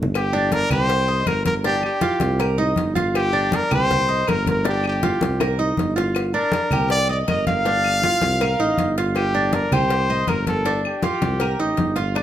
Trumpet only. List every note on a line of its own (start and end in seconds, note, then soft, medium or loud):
0.16 0.54 G4 loud
0.53 0.71 A#4 loud
0.72 1.29 C5 loud
1.27 1.46 A#4 loud
1.46 1.55 A#4 medium
1.66 1.82 G4 loud
1.85 2.55 G4 loud
3.16 3.57 G4 loud
3.55 3.72 A#4 loud
3.74 4.31 C5 loud
4.30 4.47 A#4 loud
4.50 4.65 A#4 medium
4.68 4.84 G4 medium
4.87 5.56 G4 medium
6.34 6.86 A#4 loud
6.91 7.08 D5 loud
7.10 7.18 D5 medium
7.28 7.45 D#5 medium
7.47 8.93 F5 loud
9.16 9.56 G4 loud
9.54 9.75 A#4 medium
9.73 10.30 C5 loud
10.29 10.47 A#4 medium
10.48 10.82 A4 medium
10.87 11.94 G4 medium